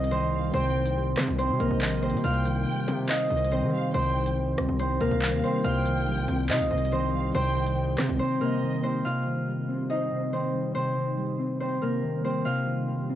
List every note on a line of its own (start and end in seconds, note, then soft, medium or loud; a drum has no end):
0.00 0.51 C2 loud
0.00 0.52 C3 medium
0.00 0.10 D#3 medium
0.00 0.31 G3 medium
0.00 5.60 G3 medium
0.00 1.42 A#3 medium
0.00 0.12 C4 medium
0.00 0.54 C4 loud
0.00 5.60 C4 medium
0.00 2.40 D#4 medium
0.00 5.60 D#4 medium
0.00 1.36 F4 medium
0.00 0.32 A#4 medium
0.00 0.11 C5 loud
0.00 0.75 C5 medium
0.00 5.60 C5 medium
0.00 0.30 D#5 medium
0.00 1.47 D#5 medium
0.00 0.50 F5 loud
0.04 closed hi-hat medium
0.11 0.74 D#3 loud
0.11 0.54 C4 medium
0.11 0.53 C5 medium
0.11 closed hi-hat medium
0.32 0.95 G3 medium
0.32 0.53 F5 medium
0.54 1.15 C2 loud
0.54 1.59 C3 medium
0.54 1.39 C4 medium
0.54 1.38 C5 loud
0.54 0.94 G5 loud
0.54 closed hi-hat medium
0.75 1.81 D#3 medium
0.86 closed hi-hat medium
0.96 2.01 G3 medium
1.18 1.28 C3 loud
1.18 2.24 C4 loud
1.18 cross-stick loud
1.18 clap medium
1.18 closed hi-hat medium
1.28 1.51 C2 loud
1.38 2.03 C4 medium
1.38 2.02 C5 medium
1.38 2.24 C5 medium
1.38 closed hi-hat medium
1.49 1.60 C3 loud
1.60 1.70 A#1 loud
1.60 2.23 C3 medium
1.60 4.82 A#3 medium
1.60 3.72 A#4 medium
1.60 2.20 D#5 medium
1.60 closed hi-hat medium
1.71 2.15 A#1 loud
1.81 2.24 D#3 medium
1.81 clap loud
1.81 closed hi-hat medium
1.89 closed hi-hat medium
1.96 closed hi-hat medium
2.02 2.24 G3 medium
2.02 3.52 C4 medium
2.02 3.52 C5 medium
2.02 closed hi-hat medium
2.10 2.23 C3 loud
2.10 closed hi-hat medium
2.17 closed hi-hat medium
2.24 2.65 C2 loud
2.24 3.29 C3 medium
2.24 4.77 F4 medium
2.24 3.90 F5 loud
2.24 3.05 G5 loud
2.24 closed hi-hat medium
2.45 3.50 D#3 medium
2.45 closed hi-hat medium
2.67 3.72 G3 medium
2.88 3.08 C3 loud
2.88 3.94 C4 loud
2.88 closed hi-hat medium
3.09 5.80 D#4 medium
3.09 4.15 C5 loud
3.09 4.87 D#5 medium
3.09 3.29 F5 medium
3.09 clap loud
3.09 closed hi-hat medium
3.30 3.64 C2 loud
3.30 3.93 C3 medium
3.30 3.70 D#5 medium
3.30 closed hi-hat soft
3.38 closed hi-hat medium
3.45 closed hi-hat medium
3.51 4.15 D#3 loud
3.51 3.94 C4 medium
3.51 3.94 C5 medium
3.51 closed hi-hat medium
3.62 3.72 D#3 loud
3.73 4.35 G3 medium
3.73 3.93 F5 loud
3.94 4.56 C2 loud
3.94 5.00 C3 medium
3.94 4.80 C4 medium
3.94 4.79 C5 loud
3.94 4.34 G5 loud
3.94 closed hi-hat medium
4.16 5.21 D#3 medium
4.26 closed hi-hat medium
4.36 5.42 G3 medium
4.58 4.68 C2 loud
4.58 5.64 C4 medium
4.58 cross-stick loud
4.58 closed hi-hat medium
4.69 4.99 C2 loud
4.79 5.44 C4 medium
4.79 5.64 C5 medium
4.79 5.43 C5 medium
4.79 closed hi-hat medium
5.01 5.11 C2 loud
5.01 5.63 C3 medium
5.01 8.23 A#3 medium
5.01 7.13 A#4 medium
5.01 5.61 F5 medium
5.01 closed hi-hat medium
5.11 5.34 C2 loud
5.22 5.64 D#3 loud
5.22 clap loud
5.22 closed hi-hat medium
5.29 5.43 D#2 loud
5.29 closed hi-hat medium
5.36 closed hi-hat soft
5.43 5.64 G3 medium
5.43 6.93 C4 medium
5.43 6.92 C5 loud
5.64 6.09 C2 loud
5.64 6.70 C3 medium
5.64 9.02 G3 medium
5.64 9.02 C4 medium
5.64 9.02 D#4 medium
5.64 8.17 F4 medium
5.64 9.01 C5 medium
5.64 7.31 F5 loud
5.64 6.46 G5 loud
5.64 closed hi-hat medium
5.86 6.91 D#3 medium
5.86 closed hi-hat medium
6.07 6.19 A#1 loud
6.07 7.12 G3 medium
6.18 6.28 C2 loud
6.28 6.51 C2 loud
6.28 7.35 C4 loud
6.28 closed hi-hat medium
6.49 6.62 C3 loud
6.49 9.21 D#4 medium
6.49 7.56 C5 medium
6.49 8.28 D#5 medium
6.49 6.70 F5 medium
6.49 clap loud
6.49 closed hi-hat medium
6.60 6.70 C2 loud
6.71 7.32 C2 loud
6.71 7.33 C3 medium
6.71 7.11 D#5 medium
6.71 closed hi-hat soft
6.78 closed hi-hat medium
6.85 closed hi-hat medium
6.92 7.55 D#3 medium
6.92 7.35 C4 medium
6.92 7.34 C5 medium
6.92 closed hi-hat medium
7.13 7.76 G3 medium
7.13 7.34 F5 medium
7.34 7.96 C2 loud
7.34 8.39 C3 medium
7.34 8.20 C4 medium
7.34 8.19 C5 loud
7.34 7.75 G5 loud
7.34 closed hi-hat medium
7.56 8.62 D#3 medium
7.67 closed hi-hat medium
7.77 8.82 G3 medium
7.98 8.09 C3 loud
7.98 9.05 C4 loud
7.98 cross-stick loud
7.98 clap medium
7.98 closed hi-hat medium
8.09 8.20 C2 loud
8.19 8.84 C4 medium
8.19 8.83 C5 medium
8.19 9.05 C5 medium
8.41 9.04 C3 medium
8.41 11.63 A#3 medium
8.41 10.53 A#4 medium
8.41 9.01 D#5 medium
8.63 9.05 D#3 medium
8.83 9.05 G3 medium
8.83 10.33 C4 medium
8.83 10.32 C5 medium
9.05 10.10 C3 medium
9.05 13.15 G3 medium
9.05 13.15 C4 medium
9.05 12.42 D#4 medium
9.05 11.58 F4 medium
9.05 12.42 C5 medium
9.05 10.71 F5 loud
9.26 10.31 D#3 medium
9.48 10.52 G3 medium
9.69 10.75 C4 medium
9.90 12.61 D#4 medium
9.90 10.96 C5 medium
9.90 11.68 D#5 medium
10.11 10.74 C3 medium
10.32 10.96 D#3 medium
10.32 10.75 C4 medium
10.32 10.74 C5 medium
10.54 11.16 G3 medium
10.75 11.81 C3 medium
10.75 11.61 C4 medium
10.75 11.60 C5 loud
10.97 12.02 D#3 medium
11.17 12.23 G3 medium
11.39 12.45 C4 medium
11.60 12.25 C4 medium
11.60 12.45 C5 medium
11.60 12.24 C5 medium
11.82 12.44 C3 medium
11.82 13.15 A#3 medium
11.82 13.15 A#4 medium
12.03 12.45 D#3 medium
12.24 12.45 G3 medium
12.24 13.15 C4 medium
12.24 13.15 C5 medium
12.45 13.15 C3 medium
12.45 13.15 D#4 medium
12.45 13.15 F4 medium
12.45 13.15 C5 medium
12.45 13.15 F5 loud
12.66 13.15 D#3 medium
12.88 13.15 G3 medium
13.09 13.15 C4 medium